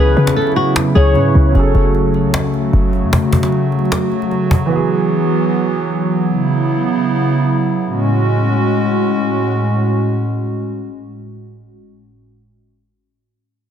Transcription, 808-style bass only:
0.00 0.16 C#2 loud
0.17 0.93 C#3 loud
0.96 1.17 C#2 loud
1.15 1.34 G#2 loud
1.35 1.54 C#2 loud
1.55 1.74 F#1 loud
1.75 2.26 F#1 loud
2.25 2.71 C#2 loud
2.73 3.05 F#1 loud
3.04 3.12 F#2 loud

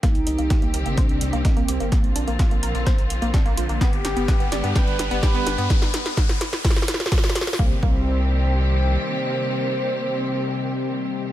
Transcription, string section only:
0.03 1.90 D#3 medium
0.03 3.77 A#3 medium
0.03 1.90 C4 medium
0.03 1.90 G4 medium
1.92 5.66 D3 medium
1.92 3.79 C4 medium
1.92 3.79 F4 medium
3.81 5.68 G3 medium
3.81 5.68 B3 medium
3.81 5.68 G4 medium
7.59 11.32 D#3 medium
7.59 11.32 A#3 medium
7.59 11.32 C4 medium
7.59 11.32 G4 medium

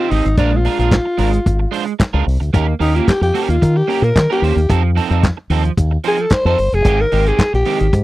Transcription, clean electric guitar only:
0.00 0.10 C4 medium
0.00 0.10 D#4 medium
0.00 0.11 G4 medium
0.00 0.12 C5 medium
0.11 0.27 C4 medium
0.11 0.25 D#4 medium
0.11 0.25 G4 medium
0.11 0.25 D#5 medium
0.26 muted clean electric guitar stroke soft
0.38 0.58 G#3 medium
0.38 0.52 D4 medium
0.38 0.52 F4 loud
0.38 0.52 A#4 medium
0.53 muted clean electric guitar stroke soft
0.65 0.79 G#3 medium
0.65 0.79 D4 medium
0.65 0.78 F4 medium
0.65 0.78 A#4 medium
0.79 0.95 G#3 medium
0.79 0.94 D4 medium
0.79 0.94 F4 medium
0.79 0.94 A#4 medium
1.05 muted clean electric guitar stroke soft
1.18 1.38 G#3 medium
1.18 1.32 D4 medium
1.18 1.32 F4 medium
1.18 1.31 A#4 loud
1.32 muted clean electric guitar stroke soft
1.59 muted clean electric guitar stroke soft
1.71 1.92 G#3 medium
1.71 1.86 D4 medium
1.71 1.85 F4 medium
1.71 1.85 C5 medium
1.86 muted clean electric guitar stroke soft
1.99 muted clean electric guitar stroke soft
2.13 2.25 G#3 medium
2.13 2.25 D4 medium
2.13 2.25 F4 medium
2.13 2.26 A#4 medium
2.40 muted clean electric guitar stroke soft
2.53 2.74 A#3 medium
2.53 2.67 C#4 medium
2.53 2.67 G4 medium
2.53 2.66 A#4 medium
2.67 muted clean electric guitar stroke soft
2.79 2.94 A#3 medium
2.79 2.94 C#4 medium
2.79 2.94 G4 medium
2.79 2.93 A#4 medium
2.94 3.10 A#3 medium
2.94 3.10 C#4 soft
2.94 3.10 G4 medium
2.94 3.10 A#4 soft
3.21 muted clean electric guitar stroke soft
3.34 3.55 A#3 medium
3.34 3.49 C#4 medium
3.34 3.48 G4 medium
3.34 3.48 A#4 medium
3.49 muted clean electric guitar stroke medium
3.62 muted clean electric guitar stroke soft
3.76 muted clean electric guitar stroke medium
3.88 4.08 A#3 medium
3.88 4.03 C#4 medium
3.88 4.03 G4 medium
3.88 4.02 A#4 medium
4.03 muted clean electric guitar stroke soft
4.16 muted clean electric guitar stroke soft
4.30 4.42 A#3 medium
4.30 4.42 C#4 medium
4.30 4.43 G4 medium
4.30 4.44 A#4 medium
4.43 4.59 A#3 medium
4.43 4.56 C#4 medium
4.43 4.56 G4 medium
4.43 4.56 C5 medium
4.57 muted clean electric guitar stroke soft
4.69 4.90 F3 medium
4.69 4.83 C4 medium
4.69 4.83 D#4 medium
4.69 4.82 A4 medium
4.84 muted clean electric guitar stroke soft
4.95 5.10 F3 medium
4.95 5.10 C4 medium
4.95 5.09 D#4 medium
4.95 5.09 A4 medium
5.10 5.26 F3 medium
5.10 5.26 C4 medium
5.10 5.26 D#4 medium
5.10 5.25 A4 medium
5.37 muted clean electric guitar stroke soft
5.50 5.71 F3 medium
5.50 5.64 C4 medium
5.50 5.64 D#4 medium
5.50 5.63 A4 medium
5.64 muted clean electric guitar stroke soft
5.91 muted clean electric guitar stroke soft
6.04 6.25 F3 medium
6.04 6.18 C4 medium
6.04 6.18 D#4 medium
6.04 6.18 C5 medium
6.18 muted clean electric guitar stroke soft
6.31 muted clean electric guitar stroke soft
6.46 6.57 F3 medium
6.46 6.58 C4 medium
6.46 6.58 D#4 medium
6.46 6.58 A4 medium
6.59 muted clean electric guitar stroke soft
6.74 muted clean electric guitar stroke soft
6.85 7.06 D#3 medium
6.85 7.00 G#3 medium
6.85 6.99 C4 medium
6.85 6.99 G4 loud
7.00 muted clean electric guitar stroke medium
7.12 7.26 D#3 medium
7.12 7.26 G#3 medium
7.12 7.26 C4 medium
7.12 7.25 G4 medium
7.26 7.42 D#3 soft
7.26 7.42 G#3 soft
7.26 7.42 C4 soft
7.26 7.41 G4 medium
7.53 muted clean electric guitar stroke soft
7.66 7.86 D#3 medium
7.66 7.80 G#3 medium
7.66 7.79 C4 loud
7.66 7.79 G4 medium
7.80 muted clean electric guitar stroke soft
7.93 muted clean electric guitar stroke soft

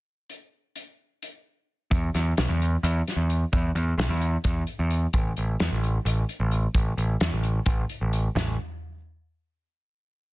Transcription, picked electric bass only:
1.91 2.09 E2 medium
2.15 2.32 E2 medium
2.38 2.47 B1 medium
2.49 2.76 E2 medium
2.83 3.01 E2 medium
3.16 3.44 E2 medium
3.53 3.70 E2 medium
3.75 3.93 E2 medium
3.98 4.07 B1 medium
4.09 4.36 E2 medium
4.45 4.63 E2 loud
4.79 5.06 E2 medium
5.14 5.31 A1 medium
5.38 5.55 A1 medium
5.61 5.69 E2 loud
5.71 5.98 A1 medium
6.05 6.23 A1 loud
6.40 6.66 A1 medium
6.75 6.92 A1 medium
6.98 7.15 A1 medium
7.21 7.29 E2 loud
7.32 7.59 A1 medium
7.66 7.84 A1 loud
8.01 8.28 A1 medium
8.35 8.56 A1 medium

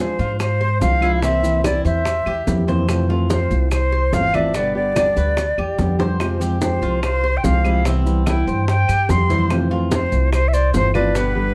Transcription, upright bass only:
0.19 0.77 G#2 medium
0.81 1.79 C2 medium
1.85 2.23 E2 medium
2.26 2.46 E2 medium
2.47 3.45 F2 medium
3.51 4.09 C2 medium
4.12 5.10 G1 medium
5.16 5.55 D2 medium
5.58 5.77 E2 medium
5.79 6.76 F2 medium
6.82 7.40 C2 medium
7.44 8.41 C2 medium
8.47 8.86 G2 medium
8.89 9.08 G2 medium
9.09 10.06 F2 medium
10.12 10.70 C2 medium
10.74 11.54 G1 medium

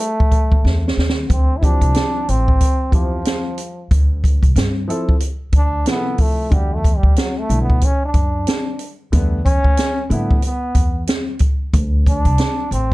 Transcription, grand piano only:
1.61 1.70 E3 medium
1.61 2.55 C4 medium
1.61 2.55 E4 medium
1.61 2.56 G4 medium
1.67 2.58 F3 medium
2.91 3.17 F3 medium
2.91 3.17 C4 medium
2.91 3.18 E4 medium
2.91 3.18 G4 medium
4.88 5.13 F3 medium
4.88 5.13 C4 medium
4.88 5.14 E4 medium
4.88 5.14 A4 medium
5.85 6.52 C3 medium
5.85 6.51 F3 medium
5.85 6.52 E4 medium
5.85 5.95 G#4 medium
5.95 6.56 A4 medium
6.50 6.76 D3 medium
6.50 6.76 G3 medium
6.50 6.77 A3 medium
6.50 6.77 F#4 medium
7.49 7.74 D3 medium
7.49 7.75 G3 medium
7.49 7.75 A3 medium
7.49 7.75 E4 medium
9.12 9.37 D3 medium
9.12 9.38 G3 medium
9.12 9.38 A3 medium
9.12 9.38 B3 loud
10.09 10.35 D3 medium
10.09 10.35 G3 medium
10.09 10.36 A3 medium
10.09 10.36 E4 medium

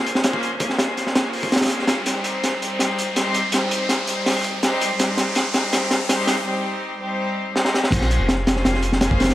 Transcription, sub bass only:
0.00 0.59 F1 medium
0.88 1.53 F1 medium
1.52 1.60 G#1 loud
1.61 1.69 F1 medium
1.70 1.78 A#1 medium
2.07 2.33 C2 loud
2.34 2.78 G1 medium
2.80 3.52 G1 medium
3.81 4.25 G1 medium
4.44 4.61 G1 loud
4.63 4.79 A#1 loud
4.81 4.89 C2 medium
4.99 5.25 C2 loud
5.27 5.71 G1 medium
5.72 6.44 G1 medium
7.92 8.18 A#1 loud
8.20 8.64 F1 medium
8.65 9.34 F1 medium

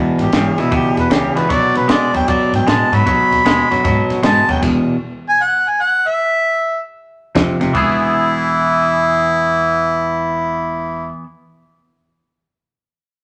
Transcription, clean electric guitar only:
0.00 0.30 E2 medium
0.00 0.30 B2 medium
0.33 0.55 E2 medium
0.33 0.56 C#3 medium
0.58 0.70 E2 medium
0.58 0.70 B2 medium
0.71 1.07 E2 medium
0.71 1.08 B2 medium
1.10 1.33 E2 medium
1.10 1.33 C#3 medium
1.35 1.48 E2 medium
1.35 1.48 B2 medium
1.49 1.86 B2 medium
1.49 1.86 F#3 medium
1.88 2.11 B2 medium
1.88 2.11 G#3 medium
2.13 2.26 B2 medium
2.13 2.26 F#3 medium
2.28 2.64 B2 medium
2.28 2.64 F#3 medium
2.67 2.89 B2 medium
2.67 2.90 G#3 medium
2.92 3.05 B2 medium
2.92 3.05 F#3 medium
3.06 3.42 B2 medium
3.06 3.42 F#3 medium
3.45 3.68 B2 medium
3.45 3.68 G#3 loud
3.71 3.83 B2 medium
3.71 3.83 F#3 medium
3.84 4.20 B2 medium
3.84 4.20 F#3 loud
4.23 4.46 B2 medium
4.23 4.46 G#3 medium
4.49 4.61 B2 medium
4.49 4.61 F#3 medium
4.62 4.95 E2 medium
4.62 4.96 B2 medium
7.35 7.58 F2 medium
7.35 7.58 C3 medium
7.60 7.73 F2 medium
7.60 7.73 C3 medium
7.73 11.23 E3 medium
7.73 11.25 B3 loud
7.73 11.26 E4 loud
7.73 11.27 G#4 loud

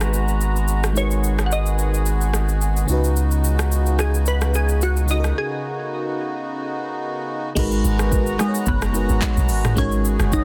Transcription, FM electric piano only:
0.00 0.90 G#3 medium
0.00 0.91 D#4 medium
0.00 0.92 F#4 medium
0.00 0.93 G#4 medium
0.00 0.94 B4 medium
0.93 2.83 G#3 medium
0.93 2.84 D#4 medium
0.93 2.85 F#4 medium
0.99 2.86 A#4 medium
0.99 2.87 B4 medium
2.34 2.60 F#5 medium
2.62 3.13 G#5 medium
2.85 5.03 C#3 medium
2.85 5.04 C#4 medium
2.85 5.05 D#4 medium
2.91 5.06 F#4 medium
2.91 5.07 B4 medium
5.06 7.23 C#3 medium
5.06 7.24 C#4 medium
5.06 7.25 D#4 medium
5.11 7.26 F#4 medium
5.11 5.18 A4 medium
5.20 7.31 A#4 medium
7.55 8.23 G#3 loud
7.55 8.24 D#4 loud
7.55 8.24 F#4 loud
7.55 8.25 A#4 loud
7.55 8.25 B4 loud
8.38 8.84 G#3 medium
8.38 8.84 D#4 medium
8.38 8.85 F#4 medium
8.38 8.85 A#4 medium
8.38 8.48 B4 medium
8.48 8.89 C#5 medium
8.93 9.61 G#3 medium
8.93 9.61 D#4 medium
8.93 9.62 F#4 medium
8.93 9.62 A#4 medium
8.93 9.63 B4 medium
9.75 10.43 G#3 loud
9.75 10.44 D#4 medium
9.75 10.44 F#4 medium
9.75 10.44 A#4 medium
9.75 10.44 C#5 loud

